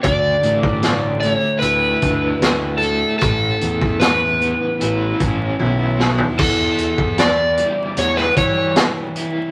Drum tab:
CC |----------------|----------------|x---------------|
HH |x-x-x-x-x-x-x-x-|x-x-x-x-x-x-----|--x-x-x-x-x-x-x-|
SD |----o-------o---|----o---------o-|----o----o--o---|
T1 |----------------|------------o---|----------------|
FT |----------------|---------------o|----------------|
BD |o--o------o-----|o--o------o-----|o--o------o-----|